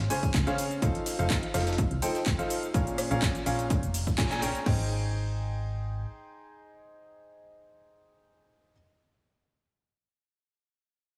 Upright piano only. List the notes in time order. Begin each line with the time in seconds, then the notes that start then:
0.10 C#3 C#4 G#4 C5 G#5
0.47 C#3 C#4 G#4 C5 F5
0.82 F3 D#4 A4 C5 F5
1.19 F3 D#4 A4 C5 F5
1.54 F3 D#4 A4 C5 F5
2.02 F3 D#4 A4 C5 G5
2.39 F3 D#4 A4 C5 F5
2.74 A#2 C#4 G#4 A#4 F5
3.11 A#2 C#4 G#4 A#4 F5
3.46 A#2 C#4 G#4 A#4 F5
4.18 A#2 C#4 G#4 A#4 G#5
4.31 A#2 C#4 G#4 A#4 G#5
4.42 C#4 G#4 A#4 G5
4.66 D#4 G#4 C5 G5